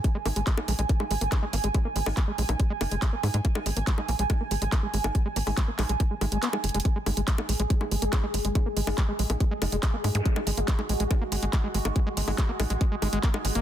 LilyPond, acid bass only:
\new Staff \with { instrumentName = "Acid bass" } { \clef bass \time 4/4 \key fis \mixolydian \tempo 4 = 141 gis16 gis16 ais16 gis16 gis16 ais16 gis16 gis16 ais16 gis16 gis16 ais16 gis16 gis16 ais16 gis16 | gis16 ais16 gis16 gis16 ais16 gis16 gis16 ais16 gis16 gis16 ais16 gis16 gis16 ais16 gis16 gis16 | ais16 gis16 gis16 ais16 gis16 gis16 ais16 gis16 gis16 ais16 gis16 gis16 ais16 gis16 gis16 ais16 | gis16 gis16 ais16 gis16 gis16 ais16 gis16 gis16 ais16 gis16 gis16 gis16 b16 gis16 gis16 gis16 |
gis16 gis16 gis16 gis16 gis16 ais16 gis16 gis16 gis16 gis16 gis16 ais16 gis16 gis16 gis16 gis16 | gis16 ais16 gis16 gis16 gis16 gis16 gis16 ais16 gis16 gis16 gis16 gis16 gis16 ais16 gis16 gis16 | gis16 gis16 gis16 ais16 gis16 gis16 gis16 gis16 gis16 ais16 gis16 gis16 gis16 gis16 gis16 ais16 | gis16 gis16 gis16 gis16 gis16 ais16 gis16 gis16 gis16 gis16 gis16 gis16 ais16 gis16 gis16 ais16 | }